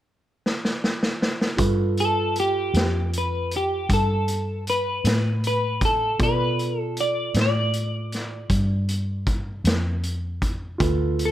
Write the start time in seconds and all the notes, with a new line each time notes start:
0.46 snare
0.65 snare
0.84 snare
1.03 snare
1.22 snare
1.41 snare
1.57 G2 F4 A4 B4, kick, closed hi-hat
1.97 A4, closed hi-hat
2.36 closed hi-hat
2.40 G4
2.74 F2, snare, closed hi-hat
3.13 closed hi-hat
3.18 B4
3.51 closed hi-hat
3.56 G4
3.89 G2, kick, closed hi-hat
3.93 A4
4.28 closed hi-hat
4.67 B4, closed hi-hat
5.04 A2, snare, closed hi-hat
5.44 B4, closed hi-hat
5.81 kick, closed hi-hat
5.85 A4
6.19 B2 F4 A4 B4 D5, kick, closed hi-hat
6.59 closed hi-hat
6.80 A4
6.97 D5, closed hi-hat
7.34 A2, snare, closed hi-hat
7.41 D5
7.73 closed hi-hat
8.12 snare, closed hi-hat
8.50 G2, kick, closed hi-hat
8.88 closed hi-hat
9.27 kick, closed hi-hat
9.64 F2, snare, closed hi-hat
10.03 closed hi-hat
10.42 kick, closed hi-hat
10.78 D2 F4 A4 B4, kick, closed hi-hat
11.19 closed hi-hat
11.25 A4